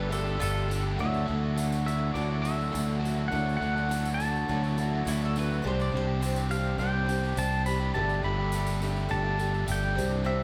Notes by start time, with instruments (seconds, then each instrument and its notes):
Already playing: fingered electric bass G1, steel-string acoustic guitar G3 D4 G4, accordion D4 G4 A4, mandolin B4, pedal steel guitar D5
0.09 overdriven electric guitar G3 A3 D4 G4, upright piano D4 G4 A4 D5, steel-string acoustic guitar A4, mandolin A4, pedal steel guitar C5, tambourine
0.23 overdriven electric guitar A3 D4 G4, tambourine
0.38 fingered electric bass G1, overdriven electric guitar G3 A3 D4 G4, mandolin F4 A4, tambourine
0.42 steel-string acoustic guitar A4
0.57 tambourine
0.68 overdriven electric guitar G3 A3 D4 G4, steel-string acoustic guitar A4, tambourine
0.82 overdriven electric guitar A3 D4 G4
0.96 fingered electric bass D2, overdriven electric guitar D3 F#3 A3 D4 F#4, accordion D4 F#4, upright piano E4 F#4 A4 D5, steel-string acoustic guitar E4 A4
1.00 accordion E4 A4, pedal steel guitar E5
1.14 tambourine
1.26 fingered electric bass D2, overdriven electric guitar F#3 A3 D4 F#4, steel-string acoustic guitar E4 A4
1.41 overdriven electric guitar A3 D4 F#4
1.56 overdriven electric guitar D3 F#3 A3 D4 F#4, steel-string acoustic guitar E4 A4, tambourine
1.72 tambourine
1.85 overdriven electric guitar F#3 A3 D4 F#4, steel-string acoustic guitar E4 A4, pedal steel guitar E5, tambourine
2.14 fingered electric bass D2, steel-string acoustic guitar D3 E4 A4, overdriven electric guitar F#3 A3 D4 F#4, pedal steel guitar D5, tambourine
2.29 overdriven electric guitar A3 D4 F#4
2.42 overdriven electric guitar F#3 A3 D4 F#4, steel-string acoustic guitar A4, pedal steel guitar E5, tambourine
2.46 steel-string acoustic guitar A3 E4
2.56 overdriven electric guitar A3 D4 F#4
2.61 tambourine
2.71 fingered electric bass D2, overdriven electric guitar D3 F#3 A3 D4 F#4, steel-string acoustic guitar E4
2.75 steel-string acoustic guitar A4, tambourine
2.99 overdriven electric guitar F#3 A3 D4 F#4
3.04 steel-string acoustic guitar A3 E4 A4, tambourine
3.16 overdriven electric guitar A3 D4 F#4
3.28 overdriven electric guitar D3 F#3, upright piano E4 F#4 A4 D5, accordion E4 F#4 A4, pedal steel guitar F#5
3.32 fingered electric bass D2, overdriven electric guitar A3 D4 F#4, steel-string acoustic guitar E4 A4, accordion D5, tambourine
3.49 tambourine
3.57 overdriven electric guitar F#3 A3, pedal steel guitar F#5
3.61 fingered electric bass D2, overdriven electric guitar D4 F#4, steel-string acoustic guitar E4 A4, tambourine
3.75 overdriven electric guitar A3 D4 F#4, tambourine
3.89 overdriven electric guitar D3 F#3 A3 D4 F#4, steel-string acoustic guitar E4 A4, tambourine
4.05 tambourine
4.14 steel-string acoustic guitar A4, pedal steel guitar A5
4.19 overdriven electric guitar F#3 A3 D4 F#4, steel-string acoustic guitar E4, tambourine
4.35 tambourine
4.48 fingered electric bass D2, steel-string acoustic guitar D3 E4 A4, overdriven electric guitar F#3 A3 D4 F#4, tambourine
4.63 overdriven electric guitar A3 D4 F#4, tambourine
4.77 overdriven electric guitar F#3 A3 D4 F#4, steel-string acoustic guitar E4 A4, tambourine
4.93 overdriven electric guitar A3 D4 F#4
5.06 fingered electric bass D2, overdriven electric guitar D3 F#3 A3 D4 F#4, steel-string acoustic guitar E4 A4, mandolin E4, tambourine
5.22 mandolin A4, tambourine
5.35 overdriven electric guitar F#3 A3 D4 F#4, steel-string acoustic guitar E4 A4, mandolin B4, tambourine
5.50 overdriven electric guitar A3 D4 F#4, tambourine
5.63 fingered electric bass C2, overdriven electric guitar C3 G3 C4 D4 G4, accordion C4 D4 G4 C5, upright piano D4 G4 C5 D5, steel-string acoustic guitar C5
5.67 mandolin C5
5.80 mandolin D5, tambourine
5.92 fingered electric bass C2, overdriven electric guitar G3 C4 D4 G4, steel-string acoustic guitar C5
5.97 mandolin C5
6.07 overdriven electric guitar C4 D4 G4
6.21 overdriven electric guitar C3 G3 C4 D4 G4, steel-string acoustic guitar C5, tambourine
6.36 tambourine
6.49 overdriven electric guitar G3 C4 D4 G4, steel-string acoustic guitar C5, pedal steel guitar F5, tambourine
6.65 tambourine
6.78 fingered electric bass C2, overdriven electric guitar G3 C4 D4 G4, steel-string acoustic guitar C5, pedal steel guitar G5, tambourine
6.93 overdriven electric guitar C4 D4 G4
7.07 overdriven electric guitar G3 C4 D4 G4, steel-string acoustic guitar C5, tambourine
7.22 overdriven electric guitar C4 D4 G4
7.37 fingered electric bass C2, overdriven electric guitar C3 G3 C4 D4 G4, steel-string acoustic guitar C5, pedal steel guitar A5, tambourine
7.66 overdriven electric guitar G3 C4 D4 G4, steel-string acoustic guitar C5, pedal steel guitar B5, tambourine
7.80 overdriven electric guitar C4 D4 G4
7.94 fingered electric bass G1, overdriven electric guitar G3 A3 D4 G4, accordion A3 D4 G4 A4, upright piano D4 G4 A4 D5, steel-string acoustic guitar A4, pedal steel guitar A5
8.09 tambourine
8.23 fingered electric bass G1, overdriven electric guitar G3 A3 D4 G4, steel-string acoustic guitar A4, pedal steel guitar B5
8.38 overdriven electric guitar A3 D4 G4
8.52 overdriven electric guitar G3 A3 D4 G4, steel-string acoustic guitar A4, tambourine
8.67 tambourine
8.80 overdriven electric guitar G3 A3 D4 G4, steel-string acoustic guitar A4, tambourine
8.96 tambourine
9.10 fingered electric bass G1, overdriven electric guitar G3 A3 D4 G4, steel-string acoustic guitar A4, pedal steel guitar A5, tambourine
9.24 overdriven electric guitar A3 D4 G4
9.38 overdriven electric guitar G3 A3 D4 G4, steel-string acoustic guitar A4, tambourine
9.53 overdriven electric guitar A3 D4 G4, tambourine
9.67 fingered electric bass G1, overdriven electric guitar G3 A3 D4 G4, steel-string acoustic guitar A4, tambourine
9.72 pedal steel guitar G5
9.83 tambourine
9.95 fingered electric bass C2, overdriven electric guitar C3 G3 C4 D4 G4, accordion C4 D4 G4 C5, upright piano D4 G4 C5, steel-string acoustic guitar C5, tambourine
9.99 upright piano D5
10.10 overdriven electric guitar C4 D4 G4
10.24 overdriven electric guitar C3 G3 C4 D4 G4, steel-string acoustic guitar C5, pedal steel guitar E5